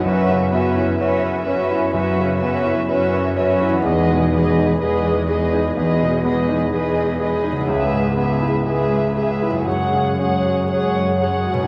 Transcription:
<<
  \new Staff \with { instrumentName = "Violin section" } { \time 4/4 \key fis \mixolydian \tempo 4 = 62 <b' e''>8 <b' e''>8 <b' e''>8 <b' e''>8 <b' e''>8 <b' e''>8 <b' e''>8 <b' e''>8 | <b' dis''>8 <b' dis''>8 <b' dis''>8 <b' dis''>8 <b' dis''>8 <b' dis''>8 <b' dis''>8 <b' dis''>8 | <b' e''>8 <b' e''>8 <b' e''>8 <b' e''>8 <cis'' fis''>8 <cis'' fis''>8 <cis'' fis''>8 <cis'' fis''>8 | }
  \new Staff \with { instrumentName = "Grand piano" } { \time 4/4 \key fis \mixolydian fis,16 cis16 b16 e'16 cis''16 b'16 cis''16 e'16 fis,16 cis16 b16 e'16 cis''16 b'16 cis''16 e'16 | e,16 b,16 b16 dis'16 gis'16 b'16 gis'16 dis'16 e,16 b,16 b16 dis'16 gis'16 b'16 gis'16 dis'16 | cis,16 gis,16 b16 e'16 gis'16 b'16 gis'16 e'16 fis,16 cis16 cis'16 fis'16 gis'16 cis''16 gis'16 fis'16 | }
  \new Staff \with { instrumentName = "Viola section" } { \time 4/4 \key fis \mixolydian <cis' fis'>8 <cis' fis'>8 <cis' fis'>8 <cis' fis'>8 <cis' fis'>8 <cis' fis'>8 <cis' fis'>8 <cis' fis'>8 | <gis gis'>8 <gis gis'>8 <gis gis'>8 <gis gis'>8 <gis gis'>8 <gis gis'>8 <gis gis'>8 <gis gis'>8 | <gis gis'>8 <gis gis'>8 <gis gis'>8 <gis gis'>8 <gis gis'>8 <gis gis'>8 <gis gis'>8 <gis gis'>8 | }
  \new Staff \with { instrumentName = "Harp" } { \time 4/4 \key fis \mixolydian <fis, b e' cis''>1 | <e, b dis' gis'>1 | <cis b e' gis'>2 <fis, cis' fis' gis'>2 | }
  \new Staff \with { instrumentName = "Cello section" } { \clef bass \time 4/4 \key fis \mixolydian fis,4 fis,4 fis,4 fis,4 | e,4 e,4 e,4 e,4 | cis,4 cis,4 fis,4 fis,4 | }
>>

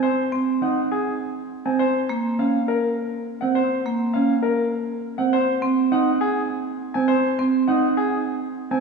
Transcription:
<<
  \new Staff \with { instrumentName = "Grand piano" } { \time 3/4 \key aes \mixolydian \tempo 4 = 102 c''16 r8. ges''16 r16 aes'16 r4 aes''16 | c''16 r8. f''16 r16 bes'16 r4 ges''16 | c''16 r8. f''16 r16 bes'16 r4 ges''16 | c''16 r8. ges''16 r16 aes'16 r4 aes''16 |
c''16 r8. ges''16 r16 aes'16 r4 aes''16 | }
  \new Staff \with { instrumentName = "Clean electric guitar" } { \time 3/4 \key aes \mixolydian r4 ees'16 r4. c'16 | r4 des'16 r4. c'16 | r4 des'16 r4. c'16 | r4 ees'16 r4. c'16 |
r4 ees'16 r4. c'16 | }
  \new Staff \with { instrumentName = "Marimba" } { \time 3/4 \key aes \mixolydian r8 c'16 r2 r16 | r8 bes16 r2 r16 | r8 bes16 r2 r16 | r8 c'16 r2 r16 |
r8 c'16 r2 r16 | }
>>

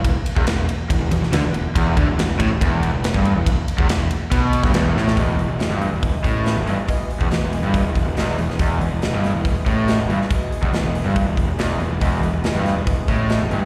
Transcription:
<<
  \new Staff \with { instrumentName = "Steel-string acoustic guitar" } { \clef bass \time 4/4 \key e \major \tempo 4 = 140 r1 | r1 | r1 | <e, b, e gis b gis'>8 <e gis b gis'>8 <e, b, e gis b gis'>8 <e gis b gis'>8 <e gis b gis'>4 <e, b, e gis b gis'>8 <e gis b gis'>8 |
<e, b, e gis b gis'>8 <e gis b gis'>8 <e, b, e gis b gis'>8 <e gis b gis'>8 <e gis b gis'>4 <e, b, e gis b gis'>8 <e gis b gis'>8 | <e, b, e gis b gis'>8 <e gis b gis'>8 <e, b, e gis b gis'>8 <e gis b gis'>8 <e gis b gis'>4 <e, b, e gis b gis'>8 <e gis b gis'>8 | <e, b, e gis b gis'>8 <e gis b gis'>8 <e, b, e gis b gis'>8 <e gis b gis'>8 <e gis b gis'>4 <e, b, e gis b gis'>8 <e gis b gis'>8 | <e, b, e gis b gis'>8 <e gis b gis'>8 <e, b, e gis b gis'>8 <e gis b gis'>8 <e gis b gis'>4 <e, b, e gis b gis'>8 <e gis b gis'>8 | }
  \new Staff \with { instrumentName = "Overdriven electric guitar" } { \clef bass \time 4/4 \key e \major e,16 r8 e,16 e,8 r8 e,16 e,16 e,16 e,16 d16 e,8 r16 | e,8 d16 e,16 e,8 a,16 e,16 e,8. e,8 g,8 e,16~ | e,16 r8 e,16 e,8 r8 b,8. g,16 e,8 a,8 | e,8 e,16 e,16 e,16 g,8 e,8 r16 a,8. e,16 g,16 r16 |
r8. e,16 e,16 e,8 g,8 e,8 e,16 e,8 e,16 e,16 | e,8 e,16 e,16 e,16 g,8 e,8 r16 a,8. e,16 g,16 r16 | r8. e,16 e,16 e,8 g,8 e,8 e,16 e,8 e,16 e,16 | e,8 e,16 e,16 e,16 g,8 e,8 r16 a,8. e,16 g,16 r16 | }
  \new Staff \with { instrumentName = "Overdriven electric guitar" } { \clef bass \time 4/4 \key e \major e,16 r8 e,16 e,8 r8 e,16 e,16 e,16 e,16 d16 e,8 r16 | e,8 d16 e,16 e,8 a,16 e,16 e,8. e,8 g,8 e,16~ | e,16 r8 e,16 e,8 r8 b,8. g,16 e,8 a,8 | e,8 e,16 e,16 e,16 g,8 e,8 r16 a,8. e,16 g,16 r16 |
r8. e,16 e,16 e,8 g,8 e,8 e,16 e,8 e,16 e,16 | e,8 e,16 e,16 e,16 g,8 e,8 r16 a,8. e,16 g,16 r16 | r8. e,16 e,16 e,8 g,8 e,8 e,16 e,8 e,16 e,16 | e,8 e,16 e,16 e,16 g,8 e,8 r16 a,8. e,16 g,16 r16 | }
  \new Staff \with { instrumentName = "Picked electric bass" } { \clef bass \time 4/4 \key e \major e,,16 r8 e,,16 e,,8 r8 e,,16 e,,16 e,,16 e,,16 d,16 e,,8 r16 | e,,8 d,16 e,,16 e,,8 a,,16 e,,16 e,,8. e,,8 g,,8 e,,16~ | e,,16 r8 e,,16 e,,8 r8 b,,8. g,,16 e,,8 a,,8 | e,,8 e,,16 e,,16 e,,16 g,,8 e,,8 r16 a,,8. e,,16 g,,16 r16 |
r8. e,,16 e,,16 e,,8 g,,8 e,,8 e,,16 e,,8 e,,16 e,,16 | e,,8 e,,16 e,,16 e,,16 g,,8 e,,8 r16 a,,8. e,,16 g,,16 r16 | r8. e,,16 e,,16 e,,8 g,,8 e,,8 e,,16 e,,8 e,,16 e,,16 | e,,8 e,,16 e,,16 e,,16 g,,8 e,,8 r16 a,,8. e,,16 g,,16 r16 | }
  \new DrumStaff \with { instrumentName = "Drums" } \drummode { \time 4/4 <bd cymr>8 cymr16 bd16 <cymr sn>8 cymr8 <bd cymr>8 cymr16 sn16 <cymr sn>8 cymr8 | <bd cymr>8 <bd cymr>8 <cymr sn>8 <bd cymr>8 <bd cymr>8 cymr8 <cymr sn>16 bd16 cymr8 | <bd cymr>8 cymr16 bd16 <cymr sn>8 cymr8 <bd cymr>8 cymr16 <bd sn>16 <cymr sn>8 sn16 sn16 | <hho bd>8 hho8 <hho sn>8 hho8 <hho bd>8 <hho bd>8 <hho sn>8 hho8 |
<hho bd>8 hho16 bd16 <hho sn>8 hho8 <hho bd>8 <hho bd>8 <hho sn>8 hho16 sn16 | <hho bd>8 hho8 <hho sn>8 <hho sn>8 <hho bd>8 <hho bd>8 <hho sn>8 hho16 sn16 | <hho bd>8 hho16 bd16 <hho sn>8 hho8 <hho bd>8 <hho bd>8 <hho sn>8 hho8 | <hho bd>8 hho8 <hho sn>8 <hho sn>8 <hho bd>8 <hho bd>8 <hho sn>8 hho8 | }
>>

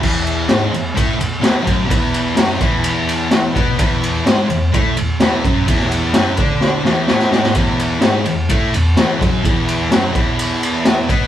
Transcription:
<<
  \new Staff \with { instrumentName = "Distorted electric guitar" } { \clef bass \time 4/4 \key e \major \tempo 4 = 128 <e, e>4 <gis, gis>8 e,8 <a, a>8 e,8 <e, e>8 <fis, fis>8 | <e, e>4 <fis, fis>8 <e, e>2 <b, b>8 | <e, e>4 <gis, gis>8 e,8 <a, a>8 e,8 <e, e>8 <fis, fis>8 | <e, e>4 <fis, fis>8 <d d'>4 <e, e>8 <a, a>8 <gis, gis>8 |
<e, e>4 <gis, gis>8 e,8 <a, a>8 e,8 <e, e>8 <fis, fis>8 | <e, e>4 <fis, fis>8 <e, e>2 <b, b>8 | }
  \new DrumStaff \with { instrumentName = "Drums" } \drummode { \time 4/4 <cymc bd>8 cymr8 <cymr sn>8 cymr8 <bd cymr>8 cymr8 <cymr sn>8 <bd cymr>8 | <bd cymr>8 cymr8 <cymr sn>8 <bd cymr>8 cymr8 cymr8 <cymr sn>8 <bd cymr>8 | <bd cymr>8 cymr8 <cymr sn>8 cymr8 <bd cymr>8 cymr8 <cymr sn>8 <bd cymr>8 | <bd cymr>16 sn16 cymr8 <cymr sn>8 <bd cymr>8 sn8 sn8 sn16 sn16 sn16 sn16 |
<bd cymr>8 cymr8 <cymr sn>16 sn16 cymr8 <bd cymr>8 cymr8 <cymr sn>8 <bd cymr>8 | <bd cymr>8 cymr8 <cymr sn>8 <bd cymr>8 cymr8 cymr8 <cymr sn>8 <bd cymr>8 | }
>>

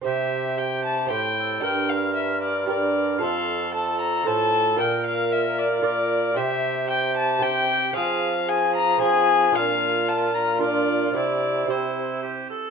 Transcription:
<<
  \new Staff \with { instrumentName = "Violin" } { \time 3/4 \key c \mixolydian \tempo 4 = 114 e''4 g''8 a''8 g''4 | g''8 f''8 e''8 d''8 d''4 | f''4 a''8 bes''8 a''4 | g''8 f''8 e''8 d''8 d''4 |
e''4 g''8 a''8 g''4 | f''4 aes''8 bes''8 aes''4 | f''4 a''8 bes''8 d''4 | d''4 c''4. r8 | }
  \new Staff \with { instrumentName = "Cor anglais" } { \time 3/4 \key c \mixolydian g'4 g'4 g'8 a'8 | bes'2 bes'4 | a'4 a'4 a'4 | bes'2 bes'4 |
g'4 g'4 g'4 | aes'4 aes'4 aes'4 | f'2 f'4 | e'4 e'4 g'8 a'8 | }
  \new Staff \with { instrumentName = "Lute" } { \time 3/4 \key c \mixolydian <c' g' c''>2 <c' g' c''>4 | <d' g' bes'>2 <d' g' bes'>4 | <f' a' c''>2 <f' a' c''>4 | <f' bes' d''>2 <f' bes' d''>4 |
<c' g' c''>2 <c' g' c''>4 | <c' aes' c''>2 <c' aes' c''>4 | <d' f' bes'>2 <d' f' bes'>4 | <c' e' g'>4 <c' e' g'>2 | }
  \new Staff \with { instrumentName = "Lute" } { \clef bass \time 3/4 \key c \mixolydian c2 a,4 | g,2. | f,2 a,4 | bes,2. |
c2. | f2. | bes,2. | c2~ c8 r8 | }
  \new Staff \with { instrumentName = "Bassoon" } { \clef bass \time 3/4 \key c \mixolydian c2 a,4 | g,2. | f,2 a,4 | bes,2. |
c2. | f2. | bes,2. | c2~ c8 r8 | }
>>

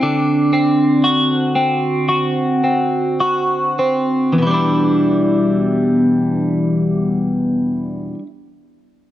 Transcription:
\new Staff \with { instrumentName = "Clean electric guitar" } { \time 4/4 \key e \minor \tempo 4 = 51 d8 c'8 fis'8 c'8 fis'8 c'8 fis'8 c'8 | <e, b, e g d' e'>1 | }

